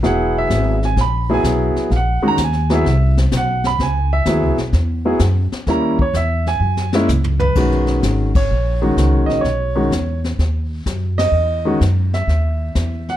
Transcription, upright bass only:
X:1
M:4/4
L:1/8
Q:"Swing" 1/4=127
K:F#mix
V:1 name="Upright bass" clef=bass
E,,,2 G,,,2 A,,,2 B,,, z | A,,, z D,,2 =C,,2 B,,,2 | C,,2 (3D,, C,, B,,, E,,2 F,, z | D,,2 E,,2 F,,2 C,,2 |
[K:B] B,,,2 G,,,2 A,,,2 (3C,, B,,, A,,, | B,,,2 E,,2 D,,2 F,,2 | E,,2 F,,2 D,,2 E,,2 |]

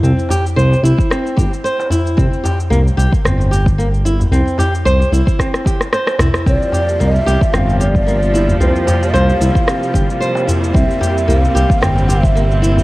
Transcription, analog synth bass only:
X:1
M:4/4
L:1/8
Q:"Swing 16ths" 1/4=112
K:Cmix
V:1 name="Analog synth bass" clef=bass
C,, z C,, C,, z G,,, z2 | C,, z C,, C,, G,,,4 | C,, z C,, C,, z3 C,, | C,, z C,, C,, G,,,4 |
C,, z C,, C,, z G,,, z2 | C,, z C,, C,, G,,,4 |]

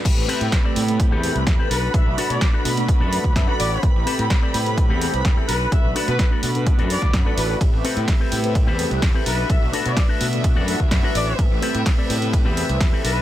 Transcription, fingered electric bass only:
X:1
M:4/4
L:1/16
Q:1/4=127
K:Ador
V:1 name="Fingered electric bass" clef=bass
A,,, A,,, z A,, z2 A,,3 E,, z C,, E,, z B,,, z | B,,, B,,, z B,, z2 B,,3 F,, z D,, F,, z A,,, z | A,,, A,,, z A,, z2 A,,3 E,, z C,, E,, z B,,, z | B,,, B,,, z B,, z2 B,,3 F,, z D,, F,, z A,,, z |
A,,, A,,, z A,, z2 A,,3 E,, z C,, E,, z B,,, z | B,,, B,,, z B,, z2 B,,3 F,, z D,, F,, z A,,, z | A,,, A,,, z A,, z2 A,,3 E,, z C,, E,, z B,,, z |]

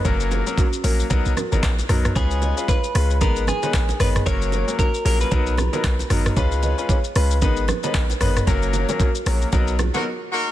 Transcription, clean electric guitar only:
X:1
M:4/4
L:1/16
Q:"Swing 16ths" 1/4=114
K:Dbmix
V:1 name="Clean electric guitar"
z16 | A4 c4 B2 A4 c2 | d4 B2 B c6- c z2 | z16 |
z16 |]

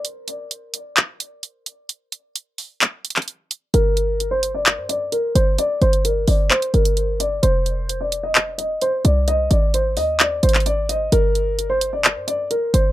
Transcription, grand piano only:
X:1
M:4/4
L:1/16
Q:1/4=130
K:Gphr
V:1 name="Grand piano"
z16 | z16 | B4- B c2 d3 d2 B2 c2 | d2 c2 B2 d2 c2 B4 d2 |
c4- c d2 e3 e2 c2 d2 | e2 d2 c2 e2 d2 c2 d2 e2 | B4- B c2 d3 d2 B2 c2 |]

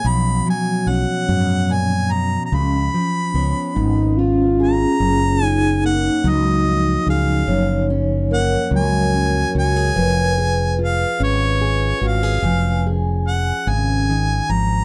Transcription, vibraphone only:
X:1
M:6/8
L:1/16
Q:3/8=48
K:F#
V:1 name="Vibraphone"
E,12- | E, C6- C C E G2- | G2 D6 E,4 | c4 A8 |
B12 | g12 |]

